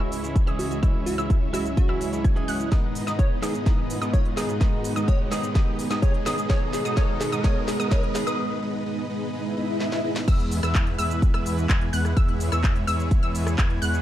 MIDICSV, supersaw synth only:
0, 0, Header, 1, 2, 480
1, 0, Start_track
1, 0, Key_signature, 4, "major"
1, 0, Tempo, 472441
1, 841, Time_signature, 4, 2, 24, 8
1, 14243, End_track
2, 0, Start_track
2, 0, Title_t, "Supersaw synth"
2, 0, Program_c, 0, 81
2, 0, Note_on_c, 0, 56, 83
2, 0, Note_on_c, 0, 61, 75
2, 0, Note_on_c, 0, 64, 76
2, 0, Note_on_c, 0, 73, 78
2, 0, Note_on_c, 0, 76, 92
2, 452, Note_off_c, 0, 56, 0
2, 452, Note_off_c, 0, 61, 0
2, 452, Note_off_c, 0, 64, 0
2, 452, Note_off_c, 0, 73, 0
2, 452, Note_off_c, 0, 76, 0
2, 480, Note_on_c, 0, 61, 84
2, 480, Note_on_c, 0, 64, 83
2, 480, Note_on_c, 0, 76, 99
2, 481, Note_on_c, 0, 56, 93
2, 481, Note_on_c, 0, 73, 84
2, 812, Note_off_c, 0, 56, 0
2, 812, Note_off_c, 0, 61, 0
2, 812, Note_off_c, 0, 64, 0
2, 812, Note_off_c, 0, 73, 0
2, 812, Note_off_c, 0, 76, 0
2, 839, Note_on_c, 0, 61, 81
2, 839, Note_on_c, 0, 73, 79
2, 839, Note_on_c, 0, 76, 99
2, 840, Note_on_c, 0, 56, 88
2, 840, Note_on_c, 0, 64, 83
2, 1171, Note_off_c, 0, 61, 0
2, 1171, Note_off_c, 0, 73, 0
2, 1171, Note_off_c, 0, 76, 0
2, 1172, Note_off_c, 0, 56, 0
2, 1172, Note_off_c, 0, 64, 0
2, 1199, Note_on_c, 0, 56, 83
2, 1199, Note_on_c, 0, 61, 77
2, 1199, Note_on_c, 0, 64, 77
2, 1199, Note_on_c, 0, 73, 78
2, 1199, Note_on_c, 0, 76, 94
2, 1531, Note_off_c, 0, 56, 0
2, 1531, Note_off_c, 0, 61, 0
2, 1531, Note_off_c, 0, 64, 0
2, 1531, Note_off_c, 0, 73, 0
2, 1531, Note_off_c, 0, 76, 0
2, 1560, Note_on_c, 0, 56, 94
2, 1560, Note_on_c, 0, 61, 87
2, 1560, Note_on_c, 0, 73, 85
2, 1560, Note_on_c, 0, 76, 102
2, 1561, Note_on_c, 0, 64, 85
2, 1892, Note_off_c, 0, 56, 0
2, 1892, Note_off_c, 0, 61, 0
2, 1892, Note_off_c, 0, 64, 0
2, 1892, Note_off_c, 0, 73, 0
2, 1892, Note_off_c, 0, 76, 0
2, 1920, Note_on_c, 0, 64, 78
2, 1921, Note_on_c, 0, 56, 83
2, 1921, Note_on_c, 0, 61, 76
2, 1921, Note_on_c, 0, 73, 77
2, 1921, Note_on_c, 0, 76, 92
2, 2257, Note_off_c, 0, 56, 0
2, 2257, Note_off_c, 0, 61, 0
2, 2257, Note_off_c, 0, 64, 0
2, 2257, Note_off_c, 0, 73, 0
2, 2257, Note_off_c, 0, 76, 0
2, 2280, Note_on_c, 0, 56, 77
2, 2280, Note_on_c, 0, 61, 69
2, 2280, Note_on_c, 0, 64, 68
2, 2280, Note_on_c, 0, 73, 68
2, 2280, Note_on_c, 0, 80, 82
2, 2492, Note_off_c, 0, 56, 0
2, 2492, Note_off_c, 0, 61, 0
2, 2492, Note_off_c, 0, 64, 0
2, 2492, Note_off_c, 0, 73, 0
2, 2492, Note_off_c, 0, 80, 0
2, 2520, Note_on_c, 0, 56, 88
2, 2520, Note_on_c, 0, 64, 82
2, 2520, Note_on_c, 0, 78, 96
2, 2521, Note_on_c, 0, 61, 82
2, 2521, Note_on_c, 0, 73, 82
2, 2732, Note_off_c, 0, 56, 0
2, 2732, Note_off_c, 0, 61, 0
2, 2732, Note_off_c, 0, 64, 0
2, 2732, Note_off_c, 0, 73, 0
2, 2732, Note_off_c, 0, 78, 0
2, 2759, Note_on_c, 0, 59, 77
2, 2760, Note_on_c, 0, 71, 75
2, 3091, Note_off_c, 0, 59, 0
2, 3092, Note_off_c, 0, 71, 0
2, 3120, Note_on_c, 0, 56, 79
2, 3120, Note_on_c, 0, 59, 71
2, 3120, Note_on_c, 0, 63, 71
2, 3120, Note_on_c, 0, 71, 73
2, 3120, Note_on_c, 0, 75, 84
2, 3452, Note_off_c, 0, 56, 0
2, 3452, Note_off_c, 0, 59, 0
2, 3452, Note_off_c, 0, 63, 0
2, 3452, Note_off_c, 0, 71, 0
2, 3452, Note_off_c, 0, 75, 0
2, 3480, Note_on_c, 0, 56, 86
2, 3480, Note_on_c, 0, 59, 78
2, 3480, Note_on_c, 0, 63, 80
2, 3480, Note_on_c, 0, 71, 80
2, 3480, Note_on_c, 0, 75, 94
2, 3701, Note_off_c, 0, 56, 0
2, 3701, Note_off_c, 0, 59, 0
2, 3701, Note_off_c, 0, 63, 0
2, 3701, Note_off_c, 0, 71, 0
2, 3701, Note_off_c, 0, 75, 0
2, 3719, Note_on_c, 0, 71, 76
2, 3720, Note_on_c, 0, 56, 84
2, 3720, Note_on_c, 0, 59, 76
2, 3720, Note_on_c, 0, 63, 75
2, 3720, Note_on_c, 0, 75, 88
2, 4051, Note_off_c, 0, 71, 0
2, 4052, Note_off_c, 0, 56, 0
2, 4052, Note_off_c, 0, 59, 0
2, 4052, Note_off_c, 0, 63, 0
2, 4052, Note_off_c, 0, 75, 0
2, 4079, Note_on_c, 0, 59, 76
2, 4079, Note_on_c, 0, 63, 78
2, 4080, Note_on_c, 0, 56, 81
2, 4080, Note_on_c, 0, 71, 77
2, 4080, Note_on_c, 0, 75, 91
2, 4411, Note_off_c, 0, 59, 0
2, 4411, Note_off_c, 0, 63, 0
2, 4411, Note_off_c, 0, 75, 0
2, 4412, Note_off_c, 0, 56, 0
2, 4412, Note_off_c, 0, 71, 0
2, 4440, Note_on_c, 0, 56, 89
2, 4440, Note_on_c, 0, 59, 82
2, 4441, Note_on_c, 0, 63, 79
2, 4441, Note_on_c, 0, 71, 80
2, 4441, Note_on_c, 0, 75, 98
2, 4661, Note_off_c, 0, 56, 0
2, 4662, Note_off_c, 0, 59, 0
2, 4662, Note_off_c, 0, 63, 0
2, 4662, Note_off_c, 0, 71, 0
2, 4662, Note_off_c, 0, 75, 0
2, 4680, Note_on_c, 0, 56, 86
2, 4680, Note_on_c, 0, 59, 78
2, 4680, Note_on_c, 0, 63, 78
2, 4680, Note_on_c, 0, 71, 81
2, 4681, Note_on_c, 0, 75, 95
2, 5012, Note_off_c, 0, 56, 0
2, 5012, Note_off_c, 0, 59, 0
2, 5012, Note_off_c, 0, 63, 0
2, 5012, Note_off_c, 0, 71, 0
2, 5012, Note_off_c, 0, 75, 0
2, 5041, Note_on_c, 0, 56, 83
2, 5041, Note_on_c, 0, 59, 76
2, 5041, Note_on_c, 0, 75, 89
2, 5042, Note_on_c, 0, 63, 76
2, 5042, Note_on_c, 0, 71, 75
2, 5372, Note_off_c, 0, 56, 0
2, 5372, Note_off_c, 0, 59, 0
2, 5372, Note_off_c, 0, 75, 0
2, 5373, Note_off_c, 0, 63, 0
2, 5373, Note_off_c, 0, 71, 0
2, 5400, Note_on_c, 0, 56, 90
2, 5400, Note_on_c, 0, 59, 84
2, 5400, Note_on_c, 0, 63, 83
2, 5400, Note_on_c, 0, 71, 81
2, 5400, Note_on_c, 0, 75, 101
2, 5621, Note_off_c, 0, 59, 0
2, 5621, Note_off_c, 0, 63, 0
2, 5621, Note_off_c, 0, 75, 0
2, 5622, Note_off_c, 0, 56, 0
2, 5622, Note_off_c, 0, 71, 0
2, 5640, Note_on_c, 0, 56, 83
2, 5640, Note_on_c, 0, 59, 80
2, 5640, Note_on_c, 0, 63, 78
2, 5640, Note_on_c, 0, 75, 94
2, 5641, Note_on_c, 0, 71, 78
2, 5971, Note_off_c, 0, 63, 0
2, 5972, Note_off_c, 0, 56, 0
2, 5972, Note_off_c, 0, 59, 0
2, 5972, Note_off_c, 0, 71, 0
2, 5972, Note_off_c, 0, 75, 0
2, 5999, Note_on_c, 0, 59, 80
2, 5999, Note_on_c, 0, 71, 80
2, 6000, Note_on_c, 0, 56, 88
2, 6000, Note_on_c, 0, 63, 79
2, 6000, Note_on_c, 0, 75, 97
2, 6331, Note_off_c, 0, 71, 0
2, 6332, Note_off_c, 0, 56, 0
2, 6332, Note_off_c, 0, 59, 0
2, 6332, Note_off_c, 0, 63, 0
2, 6332, Note_off_c, 0, 75, 0
2, 6358, Note_on_c, 0, 56, 91
2, 6358, Note_on_c, 0, 59, 85
2, 6358, Note_on_c, 0, 63, 84
2, 6358, Note_on_c, 0, 71, 81
2, 6358, Note_on_c, 0, 75, 101
2, 6580, Note_off_c, 0, 56, 0
2, 6580, Note_off_c, 0, 71, 0
2, 6581, Note_off_c, 0, 59, 0
2, 6581, Note_off_c, 0, 63, 0
2, 6581, Note_off_c, 0, 75, 0
2, 6598, Note_on_c, 0, 56, 88
2, 6598, Note_on_c, 0, 63, 81
2, 6598, Note_on_c, 0, 71, 82
2, 6598, Note_on_c, 0, 75, 95
2, 6599, Note_on_c, 0, 59, 83
2, 6931, Note_off_c, 0, 56, 0
2, 6931, Note_off_c, 0, 59, 0
2, 6931, Note_off_c, 0, 63, 0
2, 6931, Note_off_c, 0, 71, 0
2, 6931, Note_off_c, 0, 75, 0
2, 6958, Note_on_c, 0, 56, 83
2, 6958, Note_on_c, 0, 71, 76
2, 6959, Note_on_c, 0, 59, 76
2, 6959, Note_on_c, 0, 63, 77
2, 6959, Note_on_c, 0, 75, 94
2, 7060, Note_off_c, 0, 56, 0
2, 7060, Note_off_c, 0, 71, 0
2, 7061, Note_off_c, 0, 59, 0
2, 7061, Note_off_c, 0, 63, 0
2, 7061, Note_off_c, 0, 75, 0
2, 7079, Note_on_c, 0, 63, 80
2, 7079, Note_on_c, 0, 71, 81
2, 7079, Note_on_c, 0, 75, 99
2, 7411, Note_off_c, 0, 63, 0
2, 7411, Note_off_c, 0, 71, 0
2, 7411, Note_off_c, 0, 75, 0
2, 7440, Note_on_c, 0, 56, 89
2, 7440, Note_on_c, 0, 59, 78
2, 7440, Note_on_c, 0, 63, 80
2, 7440, Note_on_c, 0, 71, 81
2, 7440, Note_on_c, 0, 75, 93
2, 7541, Note_off_c, 0, 56, 0
2, 7541, Note_off_c, 0, 59, 0
2, 7541, Note_off_c, 0, 63, 0
2, 7541, Note_off_c, 0, 71, 0
2, 7541, Note_off_c, 0, 75, 0
2, 7560, Note_on_c, 0, 59, 84
2, 7560, Note_on_c, 0, 63, 82
2, 7892, Note_off_c, 0, 59, 0
2, 7892, Note_off_c, 0, 63, 0
2, 7918, Note_on_c, 0, 71, 84
2, 7919, Note_on_c, 0, 56, 90
2, 7919, Note_on_c, 0, 59, 83
2, 7919, Note_on_c, 0, 63, 84
2, 7920, Note_on_c, 0, 75, 101
2, 8021, Note_off_c, 0, 56, 0
2, 8021, Note_off_c, 0, 59, 0
2, 8021, Note_off_c, 0, 63, 0
2, 8021, Note_off_c, 0, 71, 0
2, 8021, Note_off_c, 0, 75, 0
2, 8039, Note_on_c, 0, 59, 84
2, 8039, Note_on_c, 0, 63, 85
2, 8371, Note_off_c, 0, 59, 0
2, 8371, Note_off_c, 0, 63, 0
2, 8399, Note_on_c, 0, 56, 85
2, 8400, Note_on_c, 0, 59, 82
2, 8400, Note_on_c, 0, 63, 82
2, 8400, Note_on_c, 0, 71, 82
2, 8400, Note_on_c, 0, 75, 98
2, 8501, Note_off_c, 0, 56, 0
2, 8501, Note_off_c, 0, 59, 0
2, 8501, Note_off_c, 0, 63, 0
2, 8501, Note_off_c, 0, 71, 0
2, 8501, Note_off_c, 0, 75, 0
2, 8519, Note_on_c, 0, 56, 94
2, 8519, Note_on_c, 0, 59, 85
2, 8519, Note_on_c, 0, 63, 85
2, 8519, Note_on_c, 0, 71, 85
2, 8519, Note_on_c, 0, 75, 100
2, 8741, Note_off_c, 0, 56, 0
2, 8741, Note_off_c, 0, 59, 0
2, 8741, Note_off_c, 0, 63, 0
2, 8741, Note_off_c, 0, 71, 0
2, 8741, Note_off_c, 0, 75, 0
2, 8761, Note_on_c, 0, 56, 91
2, 8761, Note_on_c, 0, 63, 83
2, 8762, Note_on_c, 0, 59, 84
2, 8762, Note_on_c, 0, 71, 83
2, 8762, Note_on_c, 0, 75, 104
2, 8982, Note_off_c, 0, 56, 0
2, 8982, Note_off_c, 0, 59, 0
2, 8982, Note_off_c, 0, 63, 0
2, 8982, Note_off_c, 0, 71, 0
2, 8982, Note_off_c, 0, 75, 0
2, 9002, Note_on_c, 0, 56, 93
2, 9002, Note_on_c, 0, 59, 87
2, 9002, Note_on_c, 0, 63, 87
2, 9002, Note_on_c, 0, 71, 82
2, 9002, Note_on_c, 0, 75, 101
2, 9222, Note_off_c, 0, 56, 0
2, 9222, Note_off_c, 0, 59, 0
2, 9222, Note_off_c, 0, 63, 0
2, 9222, Note_off_c, 0, 75, 0
2, 9223, Note_off_c, 0, 71, 0
2, 9241, Note_on_c, 0, 56, 93
2, 9241, Note_on_c, 0, 59, 84
2, 9241, Note_on_c, 0, 63, 85
2, 9241, Note_on_c, 0, 71, 86
2, 9241, Note_on_c, 0, 75, 103
2, 9462, Note_off_c, 0, 56, 0
2, 9462, Note_off_c, 0, 59, 0
2, 9462, Note_off_c, 0, 63, 0
2, 9462, Note_off_c, 0, 71, 0
2, 9462, Note_off_c, 0, 75, 0
2, 9480, Note_on_c, 0, 59, 86
2, 9480, Note_on_c, 0, 63, 82
2, 9480, Note_on_c, 0, 71, 85
2, 9480, Note_on_c, 0, 75, 100
2, 9481, Note_on_c, 0, 56, 92
2, 9701, Note_off_c, 0, 71, 0
2, 9702, Note_off_c, 0, 56, 0
2, 9702, Note_off_c, 0, 59, 0
2, 9702, Note_off_c, 0, 63, 0
2, 9702, Note_off_c, 0, 75, 0
2, 9721, Note_on_c, 0, 56, 92
2, 9721, Note_on_c, 0, 71, 87
2, 9721, Note_on_c, 0, 75, 104
2, 9722, Note_on_c, 0, 59, 85
2, 9722, Note_on_c, 0, 63, 87
2, 9942, Note_off_c, 0, 56, 0
2, 9942, Note_off_c, 0, 59, 0
2, 9942, Note_off_c, 0, 63, 0
2, 9942, Note_off_c, 0, 71, 0
2, 9942, Note_off_c, 0, 75, 0
2, 9960, Note_on_c, 0, 56, 97
2, 9960, Note_on_c, 0, 59, 87
2, 9960, Note_on_c, 0, 71, 86
2, 9960, Note_on_c, 0, 75, 105
2, 9961, Note_on_c, 0, 63, 90
2, 10181, Note_off_c, 0, 71, 0
2, 10181, Note_off_c, 0, 75, 0
2, 10182, Note_off_c, 0, 56, 0
2, 10182, Note_off_c, 0, 59, 0
2, 10182, Note_off_c, 0, 63, 0
2, 10201, Note_on_c, 0, 59, 86
2, 10201, Note_on_c, 0, 71, 85
2, 10202, Note_on_c, 0, 56, 94
2, 10202, Note_on_c, 0, 63, 86
2, 10202, Note_on_c, 0, 75, 105
2, 10422, Note_off_c, 0, 56, 0
2, 10422, Note_off_c, 0, 59, 0
2, 10422, Note_off_c, 0, 63, 0
2, 10422, Note_off_c, 0, 71, 0
2, 10422, Note_off_c, 0, 75, 0
2, 10441, Note_on_c, 0, 71, 84
2, 10442, Note_on_c, 0, 56, 91
2, 10442, Note_on_c, 0, 59, 85
2, 10442, Note_on_c, 0, 64, 83
2, 10442, Note_on_c, 0, 76, 99
2, 10772, Note_off_c, 0, 56, 0
2, 10772, Note_off_c, 0, 71, 0
2, 10773, Note_off_c, 0, 59, 0
2, 10773, Note_off_c, 0, 64, 0
2, 10773, Note_off_c, 0, 76, 0
2, 10800, Note_on_c, 0, 64, 80
2, 10800, Note_on_c, 0, 71, 81
2, 10801, Note_on_c, 0, 56, 87
2, 10801, Note_on_c, 0, 59, 79
2, 10801, Note_on_c, 0, 76, 96
2, 11132, Note_off_c, 0, 56, 0
2, 11132, Note_off_c, 0, 59, 0
2, 11132, Note_off_c, 0, 64, 0
2, 11132, Note_off_c, 0, 71, 0
2, 11132, Note_off_c, 0, 76, 0
2, 11159, Note_on_c, 0, 71, 86
2, 11159, Note_on_c, 0, 76, 102
2, 11160, Note_on_c, 0, 56, 96
2, 11160, Note_on_c, 0, 59, 90
2, 11160, Note_on_c, 0, 64, 87
2, 11491, Note_off_c, 0, 64, 0
2, 11491, Note_off_c, 0, 71, 0
2, 11491, Note_off_c, 0, 76, 0
2, 11492, Note_off_c, 0, 56, 0
2, 11492, Note_off_c, 0, 59, 0
2, 11520, Note_on_c, 0, 56, 87
2, 11520, Note_on_c, 0, 59, 77
2, 11520, Note_on_c, 0, 64, 76
2, 11520, Note_on_c, 0, 71, 77
2, 11520, Note_on_c, 0, 76, 94
2, 11856, Note_off_c, 0, 56, 0
2, 11856, Note_off_c, 0, 59, 0
2, 11856, Note_off_c, 0, 71, 0
2, 11856, Note_off_c, 0, 76, 0
2, 11857, Note_off_c, 0, 64, 0
2, 11879, Note_on_c, 0, 56, 77
2, 11879, Note_on_c, 0, 59, 69
2, 11880, Note_on_c, 0, 71, 69
2, 12091, Note_off_c, 0, 56, 0
2, 12091, Note_off_c, 0, 59, 0
2, 12092, Note_off_c, 0, 71, 0
2, 12120, Note_on_c, 0, 56, 91
2, 12120, Note_on_c, 0, 71, 85
2, 12120, Note_on_c, 0, 78, 102
2, 12121, Note_on_c, 0, 59, 83
2, 12121, Note_on_c, 0, 64, 83
2, 12332, Note_off_c, 0, 56, 0
2, 12332, Note_off_c, 0, 59, 0
2, 12332, Note_off_c, 0, 64, 0
2, 12332, Note_off_c, 0, 71, 0
2, 12332, Note_off_c, 0, 78, 0
2, 12360, Note_on_c, 0, 56, 93
2, 12360, Note_on_c, 0, 64, 85
2, 12360, Note_on_c, 0, 76, 101
2, 12692, Note_off_c, 0, 56, 0
2, 12692, Note_off_c, 0, 64, 0
2, 12692, Note_off_c, 0, 76, 0
2, 12721, Note_on_c, 0, 56, 88
2, 12721, Note_on_c, 0, 59, 77
2, 12721, Note_on_c, 0, 64, 80
2, 12721, Note_on_c, 0, 71, 81
2, 12721, Note_on_c, 0, 76, 94
2, 13052, Note_off_c, 0, 56, 0
2, 13052, Note_off_c, 0, 59, 0
2, 13052, Note_off_c, 0, 64, 0
2, 13052, Note_off_c, 0, 71, 0
2, 13052, Note_off_c, 0, 76, 0
2, 13081, Note_on_c, 0, 56, 95
2, 13081, Note_on_c, 0, 59, 86
2, 13081, Note_on_c, 0, 64, 89
2, 13082, Note_on_c, 0, 71, 88
2, 13082, Note_on_c, 0, 76, 104
2, 13412, Note_off_c, 0, 56, 0
2, 13412, Note_off_c, 0, 59, 0
2, 13412, Note_off_c, 0, 64, 0
2, 13413, Note_off_c, 0, 71, 0
2, 13413, Note_off_c, 0, 76, 0
2, 13441, Note_on_c, 0, 59, 77
2, 13442, Note_on_c, 0, 56, 87
2, 13442, Note_on_c, 0, 64, 79
2, 13442, Note_on_c, 0, 71, 80
2, 13442, Note_on_c, 0, 76, 95
2, 13777, Note_off_c, 0, 59, 0
2, 13777, Note_off_c, 0, 71, 0
2, 13778, Note_off_c, 0, 56, 0
2, 13778, Note_off_c, 0, 64, 0
2, 13778, Note_off_c, 0, 76, 0
2, 13800, Note_on_c, 0, 56, 76
2, 13800, Note_on_c, 0, 59, 71
2, 13800, Note_on_c, 0, 71, 70
2, 13800, Note_on_c, 0, 80, 85
2, 14012, Note_off_c, 0, 56, 0
2, 14012, Note_off_c, 0, 59, 0
2, 14012, Note_off_c, 0, 71, 0
2, 14012, Note_off_c, 0, 80, 0
2, 14039, Note_on_c, 0, 59, 83
2, 14039, Note_on_c, 0, 64, 82
2, 14039, Note_on_c, 0, 71, 83
2, 14039, Note_on_c, 0, 78, 101
2, 14040, Note_on_c, 0, 56, 93
2, 14243, Note_off_c, 0, 56, 0
2, 14243, Note_off_c, 0, 59, 0
2, 14243, Note_off_c, 0, 64, 0
2, 14243, Note_off_c, 0, 71, 0
2, 14243, Note_off_c, 0, 78, 0
2, 14243, End_track
0, 0, End_of_file